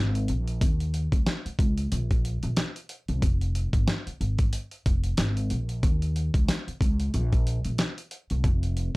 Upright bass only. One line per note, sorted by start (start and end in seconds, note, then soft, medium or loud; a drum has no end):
0.00 0.25 G#1 medium
0.29 0.58 A#1 medium
0.62 1.07 D#2 loud
1.12 1.25 C#2 medium
1.46 muted upright bass stroke soft
1.59 1.88 C#2 medium
1.92 2.37 A#1 loud
2.43 2.56 A#1 medium
3.09 3.21 C2 medium
3.23 3.68 F1 loud
3.74 3.86 G#1 medium
4.07 muted upright bass stroke soft
4.21 4.49 G#1 medium
4.86 5.15 F1 medium
5.19 5.47 G#1 medium
5.51 5.80 A#1 medium
5.83 6.28 D#2 loud
6.34 6.47 C#2 medium
6.68 muted upright bass stroke soft
6.81 7.10 C#2 medium
7.14 7.59 A#1 loud
7.65 7.77 A#1 medium
8.31 8.43 C2 medium
8.44 8.89 F1 loud